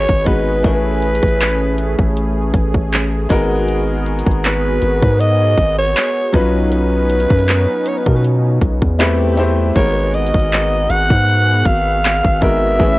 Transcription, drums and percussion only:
0.09 kick loud
0.26 kick loud
0.26 closed hi-hat medium
0.64 kick loud
0.64 closed hi-hat medium
1.02 closed hi-hat soft
1.15 closed hi-hat medium
1.23 kick loud
1.28 closed hi-hat medium
1.40 clap loud
1.40 closed hi-hat medium
1.78 closed hi-hat medium
1.99 kick loud
2.17 closed hi-hat medium
2.54 kick loud
2.54 closed hi-hat medium
2.74 kick medium
2.92 clap loud
2.92 closed hi-hat medium
3.30 kick loud
3.30 open hi-hat medium
3.68 closed hi-hat medium
4.06 closed hi-hat soft
4.19 closed hi-hat medium
4.27 kick loud
4.31 closed hi-hat medium
4.44 clap loud
4.44 closed hi-hat medium
4.82 closed hi-hat medium
5.02 kick loud
5.20 closed hi-hat medium
5.58 kick medium
5.58 closed hi-hat medium
5.96 clap loud
5.96 closed hi-hat medium
6.34 kick loud
6.34 closed hi-hat medium
6.72 closed hi-hat medium
7.10 closed hi-hat medium
7.20 closed hi-hat medium
7.30 kick loud
7.30 closed hi-hat medium
7.39 closed hi-hat medium
7.48 clap loud
7.48 closed hi-hat medium
7.86 closed hi-hat medium
8.06 kick loud
8.24 closed hi-hat medium
8.61 kick medium
8.61 closed hi-hat medium
8.82 kick medium
9.00 clap loud
9.00 closed hi-hat medium
9.37 closed hi-hat medium
9.76 kick loud
9.76 closed hi-hat medium
10.14 closed hi-hat soft
10.27 closed hi-hat medium
10.34 kick loud
10.39 closed hi-hat medium
10.52 clap loud
10.52 closed hi-hat medium
10.90 closed hi-hat medium
11.10 kick loud
11.29 closed hi-hat medium
11.65 kick medium
11.65 closed hi-hat medium
12.04 clap loud
12.04 closed hi-hat medium
12.24 kick loud
12.42 kick loud
12.42 closed hi-hat medium
12.80 kick loud
12.80 closed hi-hat medium

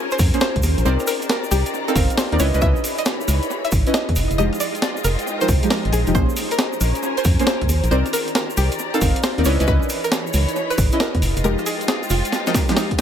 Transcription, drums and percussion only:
0.11 closed hi-hat medium
0.11 shaker soft
0.19 kick loud
0.19 open hi-hat loud
0.19 shaker medium
0.34 closed hi-hat medium
0.34 shaker soft
0.41 snare loud
0.41 shaker medium
0.56 kick medium
0.56 closed hi-hat medium
0.62 open hi-hat loud
0.62 shaker medium
0.78 closed hi-hat medium
0.78 shaker soft
0.86 shaker medium
0.99 cross-stick soft
0.99 closed hi-hat soft
0.99 shaker soft
1.07 open hi-hat loud
1.07 shaker loud
1.22 closed hi-hat medium
1.22 shaker soft
1.29 snare loud
1.29 shaker soft
1.44 shaker soft
1.51 open hi-hat loud
1.51 shaker medium
1.66 closed hi-hat medium
1.66 shaker soft
1.74 shaker medium
1.88 closed hi-hat medium
1.88 shaker soft
1.96 kick loud
1.96 open hi-hat loud
1.96 shaker medium
2.10 closed hi-hat medium
2.10 shaker soft
2.17 snare loud
2.17 open hi-hat medium
2.17 shaker medium
2.32 closed hi-hat medium
2.39 open hi-hat loud
2.39 shaker loud
2.54 closed hi-hat medium
2.54 shaker soft
2.61 kick loud
2.61 shaker medium
2.76 shaker soft
2.84 open hi-hat loud
2.84 shaker loud
2.98 closed hi-hat medium
2.98 shaker soft
3.05 snare loud
3.05 shaker medium
3.21 shaker soft
3.28 cross-stick soft
3.28 open hi-hat loud
3.28 shaker loud
3.43 closed hi-hat medium
3.43 shaker soft
3.50 shaker medium
3.65 closed hi-hat medium
3.65 shaker soft
3.71 kick loud
3.71 open hi-hat loud
3.71 shaker medium
3.86 closed hi-hat medium
3.86 shaker soft
3.94 snare loud
3.94 shaker medium
4.09 kick medium
4.09 closed hi-hat medium
4.16 open hi-hat loud
4.16 shaker loud
4.31 closed hi-hat medium
4.31 shaker soft
4.39 shaker medium
4.53 cross-stick soft
4.53 closed hi-hat soft
4.53 shaker soft
4.60 open hi-hat loud
4.60 shaker medium
4.75 closed hi-hat medium
4.75 shaker soft
4.82 snare loud
4.82 shaker medium
4.97 shaker soft
5.04 open hi-hat loud
5.04 shaker loud
5.19 closed hi-hat medium
5.19 shaker soft
5.27 shaker medium
5.41 closed hi-hat medium
5.41 shaker soft
5.48 kick loud
5.48 open hi-hat loud
5.48 shaker medium
5.63 closed hi-hat medium
5.63 shaker soft
5.70 snare loud
5.70 open hi-hat medium
5.70 shaker medium
5.85 closed hi-hat medium
5.93 open hi-hat loud
5.93 shaker medium
6.07 closed hi-hat medium
6.07 shaker soft
6.15 kick loud
6.15 shaker medium
6.29 shaker soft
6.36 open hi-hat loud
6.36 shaker medium
6.51 closed hi-hat medium
6.51 shaker soft
6.59 snare loud
6.59 shaker medium
6.73 shaker soft
6.81 cross-stick soft
6.81 open hi-hat loud
6.81 shaker loud
6.95 closed hi-hat medium
6.95 shaker soft
7.03 shaker medium
7.17 closed hi-hat medium
7.17 shaker soft
7.24 kick loud
7.24 open hi-hat loud
7.24 shaker loud
7.39 closed hi-hat medium
7.39 shaker soft
7.47 snare loud
7.47 shaker soft
7.61 kick medium
7.61 closed hi-hat medium
7.69 open hi-hat loud
7.69 shaker loud
7.84 closed hi-hat medium
7.84 shaker soft
7.92 shaker medium
8.06 cross-stick soft
8.06 closed hi-hat soft
8.06 shaker soft
8.13 open hi-hat loud
8.13 shaker loud
8.28 closed hi-hat medium
8.28 shaker soft
8.35 snare loud
8.35 shaker soft
8.50 shaker soft
8.57 open hi-hat loud
8.57 shaker medium
8.72 closed hi-hat medium
8.72 shaker soft
8.79 shaker medium
8.94 closed hi-hat medium
8.94 shaker soft
9.01 kick loud
9.01 open hi-hat loud
9.01 shaker medium
9.16 closed hi-hat medium
9.16 shaker soft
9.23 snare loud
9.23 open hi-hat medium
9.23 shaker medium
9.38 closed hi-hat medium
9.44 open hi-hat loud
9.44 shaker loud
9.60 closed hi-hat medium
9.60 shaker soft
9.67 kick loud
9.67 shaker medium
9.83 shaker soft
9.89 open hi-hat loud
9.89 shaker loud
10.04 closed hi-hat medium
10.04 shaker soft
10.12 snare loud
10.12 shaker medium
10.27 shaker soft
10.33 open hi-hat loud
10.33 shaker medium
10.48 closed hi-hat medium
10.48 shaker soft
10.56 shaker soft
10.71 closed hi-hat medium
10.71 shaker soft
10.78 kick loud
10.78 open hi-hat loud
10.78 shaker medium
10.92 closed hi-hat medium
10.92 shaker soft
11.00 snare loud
11.00 shaker soft
11.15 kick medium
11.15 closed hi-hat medium
11.22 open hi-hat loud
11.22 shaker medium
11.37 closed hi-hat medium
11.37 shaker soft
11.44 shaker medium
11.58 cross-stick soft
11.58 closed hi-hat soft
11.58 shaker soft
11.66 open hi-hat loud
11.66 shaker medium
11.81 closed hi-hat medium
11.81 shaker soft
11.88 snare loud
11.88 shaker soft
12.03 closed hi-hat soft
12.03 shaker soft
12.10 cross-stick soft
12.10 open hi-hat loud
12.10 shaker medium
12.25 closed hi-hat medium
12.25 shaker soft
12.32 snare medium
12.32 shaker soft
12.47 snare medium
12.47 closed hi-hat medium
12.47 shaker soft
12.54 kick loud
12.54 snare medium
12.54 open hi-hat loud
12.54 shaker medium
12.69 snare medium
12.69 closed hi-hat medium
12.69 shaker soft
12.77 snare medium
12.77 open hi-hat medium
12.77 shaker medium
12.91 kick medium
12.91 closed hi-hat medium

